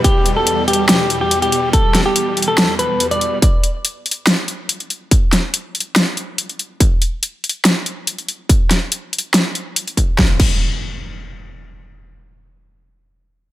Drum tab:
CC |--------------------------------|--------------------------------|--------------------------------|--------------------------------|
HH |x---x---x---xx--x---x---x-x-x---|x---x---x---xx--x---x---x-x-x---|x---x---x---xx--x---x---x-x-x---|x---x---x---xx--x---x---x-x-x---|
SD |----------------o---------------|----o-----------o---------------|----------------o---------------|----o-----------o---------------|
BD |o-------------------------------|o-------------------------------|o-------------------------------|o-------------------------------|

CC |--------------------------------|--------------------------------|----x---------------------------|--------------------------------|
HH |x---x---x---xx--x---x---x-x-x---|x---x---x---xx--x---x---x-x-x---|--------------------------------|--------------------------------|
SD |----------------o---------------|----o-----------o---------------|o-------------------------------|--------------------------------|
BD |o-------------------------------|o---------------------------o---|o---o---------------------------|--------------------------------|